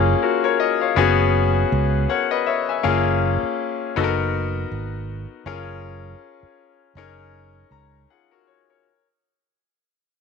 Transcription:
Already playing: fingered electric bass F#1, grand piano A#3 C#4 F4 G#4
0.23 grand piano F#4 A#4
0.44 grand piano A#4 C#5
0.60 grand piano D#5
0.81 grand piano C#5 F5
0.96 fingered electric bass F#1, grand piano B3 C#4 F#4 G#4
1.72 fingered electric bass C#2
2.09 grand piano A#4 C#5 F#5
2.31 grand piano B4 D#5
2.46 grand piano C#5 E5
2.69 grand piano E5 G#5
2.83 fingered electric bass F#1, grand piano A#3 C#4 F4 G#4
3.43 muted fingered electric bass stroke
3.96 fingered electric bass F#1, grand piano B3 D#4 F#4 A4
4.04 grand piano A#4
4.72 fingered electric bass G#1
5.46 fingered electric bass F#1, grand piano C#4 F4 G#4 A#4
6.43 muted fingered electric bass stroke
6.95 fingered electric bass F#1, grand piano C#4 D#4 G#4 A#4
7.71 fingered electric bass C#2, grand piano A#5
8.10 grand piano F4 G#4 F#5
8.31 grand piano F#4 A#4
8.47 grand piano C#5
8.70 grand piano A#4 C#5

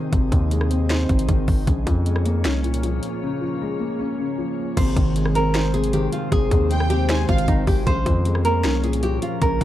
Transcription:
Already playing: grand piano C3 D#3 G#3 C4 C5, ambient pad C4 D#4 G#4 D#5
0.12 808-style bass G#1, grand piano C3, kick, closed hi-hat
0.32 808-style bass D#2, grand piano D#3, kick, closed hi-hat
0.51 grand piano G#3, closed hi-hat
0.61 cross-stick
0.71 grand piano C4, closed hi-hat
0.90 grand piano C5, snare, closed hi-hat
1.09 808-style bass G#1, grand piano C3, kick, closed hi-hat
1.19 closed hi-hat
1.28 808-style bass G#1, grand piano D#3, kick, closed hi-hat
1.48 808-style bass G#1, kick, open hi-hat
1.67 808-style bass A#1, grand piano C#3, ambient pad A#3 F4 C#5, kick, closed hi-hat
1.87 808-style bass F2, grand piano F3, kick, closed hi-hat
2.06 grand piano G#3, closed hi-hat
2.16 cross-stick
2.25 grand piano A#3, closed hi-hat
2.45 808-style bass C2, grand piano C#4, snare, closed hi-hat
2.64 grand piano A#2, closed hi-hat
2.74 closed hi-hat
2.83 grand piano F3, closed hi-hat
3.03 closed hi-hat
3.23 grand piano C#3
3.41 grand piano F3
3.62 grand piano G#3
3.80 grand piano A#3
3.99 grand piano C#4
4.20 grand piano C#3
4.38 grand piano F3
4.77 808-style bass G#1, grand piano C3, ambient pad D#3 G#3 C4 C5, nylon-string guitar C5, kick, closed hi-hat, crash
4.96 808-style bass G#1, grand piano D#3, kick, closed hi-hat
5.16 grand piano G#3, closed hi-hat
5.26 cross-stick
5.35 grand piano C4, nylon-string guitar A#4, closed hi-hat
5.55 grand piano C5, snare, closed hi-hat
5.74 grand piano C3, nylon-string guitar G#4, closed hi-hat
5.84 closed hi-hat
5.93 grand piano D#3, nylon-string guitar G4, closed hi-hat
6.12 nylon-string guitar F4, closed hi-hat
6.31 808-style bass G#1, grand piano C3, nylon-string guitar G#4, kick, closed hi-hat
6.51 808-style bass D#2, grand piano D#3, kick, closed hi-hat
6.70 grand piano G#3, violin section G5, closed hi-hat
6.80 cross-stick
6.90 grand piano C4, nylon-string guitar G4, closed hi-hat
7.09 grand piano C5, violin section G#5, snare, closed hi-hat
7.28 808-style bass G#1, grand piano C3, nylon-string guitar F4, violin section F5, kick, closed hi-hat
7.38 closed hi-hat
7.48 808-style bass G#1, grand piano D#3, nylon-string guitar D#4, kick, closed hi-hat
7.67 808-style bass G#1, nylon-string guitar G4, kick, open hi-hat
7.87 808-style bass A#1, grand piano C#3, ambient pad F3 A#3 C#4 A#4, nylon-string guitar C5, kick, closed hi-hat
8.06 808-style bass F2, grand piano F3, kick, closed hi-hat
8.25 grand piano G#3, closed hi-hat
8.35 cross-stick
8.45 grand piano A#3, nylon-string guitar A#4, closed hi-hat
8.64 808-style bass C2, grand piano C#4, snare, closed hi-hat
8.83 grand piano A#2, nylon-string guitar G#4, closed hi-hat
8.93 closed hi-hat
9.03 grand piano F3, nylon-string guitar G4, closed hi-hat
9.22 nylon-string guitar F4, closed hi-hat
9.42 808-style bass A#1, grand piano C#3, nylon-string guitar A#4, kick, closed hi-hat
9.61 808-style bass A#1, grand piano F3, kick, closed hi-hat

